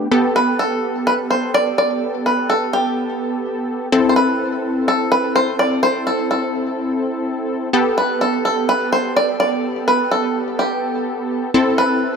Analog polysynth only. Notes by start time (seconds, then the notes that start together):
0.11 B3 G4 A4
3.92 C4 E4 A4
7.73 B3 G4 A4
11.54 C4 E4 A4